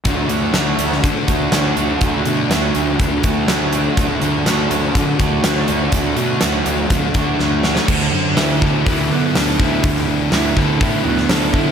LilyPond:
<<
  \new Staff \with { instrumentName = "Overdriven electric guitar" } { \time 4/4 \key d \major \tempo 4 = 123 <d fis a d' fis'>8 <a d' fis'>8 <fis a d' fis'>4. <a d' fis'>8 <fis a d' fis'>8 <a d' fis'>8 | <d fis a d' fis'>8 <a d' fis'>8 <fis a d' fis'>4. <a d' fis'>8 <fis a d' fis'>8 <a d' fis'>8 | <d fis a d' fis'>8 <a d' fis'>8 <fis a d' fis'>4. <a d' fis'>8 <fis a d' fis'>8 <a d' fis'>8 | <d fis a d' fis'>8 <a d' fis'>8 <fis a d' fis'>4. <a d' fis'>8 <fis a d' fis'>8 <a d' fis'>8 |
d4 e'8 a'8 e'8 b8 a'8 e'8 | d4 e'8 a'8 e'8 b8 a'8 e'8 | }
  \new Staff \with { instrumentName = "Distorted electric guitar" } { \time 4/4 \key d \major <d a d'>8 <a d'>8 <d a d'>8 <a d'>8 <d a d'>8 <a d'>8 <d a d'>8 <a d'>8 | <d a d'>8 <a d'>8 <d a d'>8 <a d'>8 <d a d'>8 <a d'>8 <d a d'>8 <a d'>8 | <d a d'>8 <a d'>8 <d a d'>8 <a d'>8 <d a d'>8 <a d'>8 <d a d'>8 <a d'>8 | <d a d'>8 <a d'>8 <d a d'>8 <a d'>8 <d a d'>8 <a d'>8 <d a d'>8 <a d'>8 |
d8 d'8 b8 e'8 b8 fis8 d'8 e'8 | d8 d'8 b8 e'8 b8 fis8 d'8 e'8 | }
  \new Staff \with { instrumentName = "Picked electric bass" } { \clef bass \time 4/4 \key d \major d,8 d,8 d,8 d,8 d8 d,8 d,8 d,8 | d,8 b,8 d,8 d,8 d,8 d,8 d,4 | d,8 d,8 d,8 d,8 d8 d,8 d,8 d,8 | d,8 b,8 d,8 d,8 d,8 d,8 d,4 |
d,8 fis,8 d,8 d,8 d,8 d8 d,8 d,8 | d,8 d,8 d,8 d,8 a,8 d,8 d,8 d8 | }
  \new DrumStaff \with { instrumentName = "Drums" } \drummode { \time 4/4 <hh bd>8 hh8 <hh sn>8 hh16 sn16 <hh bd>8 <hh bd>8 <hh sn>8 hh8 | <hh bd>8 hh8 <hh sn>8 hh8 <hh bd>8 <hh bd>8 <hh sn>8 hh8 | <hh bd>8 hh8 <hh sn>8 hh8 <hh bd>8 <hh bd>8 <hh sn>16 sn16 hh8 | <hh bd>8 hh8 <hh sn>8 hh8 <hh bd>8 <hh bd>8 sn8 sn16 sn16 |
<cymc bd>4 <hho sn>8 bd8 <hho bd>4 <hho sn>8 bd8 | <hho bd>16 sn8. <hho sn>8 bd8 <hho bd>8. sn16 <hho sn>8 bd8 | }
>>